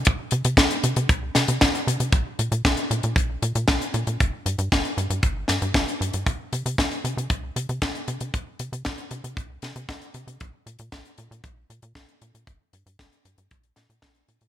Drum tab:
HH |x-xxxxxxx-xxxxxx|x-xxxxxxx-xxxxxx|x-xxxxxxx-xxxxxx|x-xxxxxxx-xxxxxx|
SD |----o-----o-o---|----o-------o---|----o-----o-o---|----o-------o---|
BD |o---o---o---o---|o---o---o---o---|o---o---o---o---|o---o---o---o---|

HH |x-xxxxxxx-xxxxxx|x-xxxxxxx-xxxxxx|x-xxxxxxxxxxxxxx|
SD |----o-----o-o---|----o-------o---|----o-----o-o---|
BD |o---o---o---o---|o---o---o---o---|o---o---o---o---|